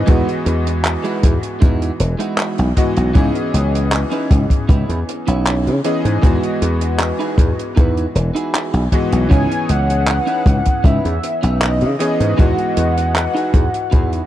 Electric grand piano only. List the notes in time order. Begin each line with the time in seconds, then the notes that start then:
Already playing: B3 C#4
0.06 E3 G#3 B3 F#4 D#5
2.76 E3 G#3 B3 F#4 D#5
3.14 E3 B3 C#4 G#4 D#5
5.84 E3 B3 C#4 G#4 D#5
6.21 E3 G#3 B3 F#4 D#5
8.92 E3 G#3 B3 F#4 D#5
9.30 E3 B3 C#4 G#4 C#5
11.99 E3 B3 C#4 G#4 D#5
12.37 E3 G#3 B3 F#4 D#5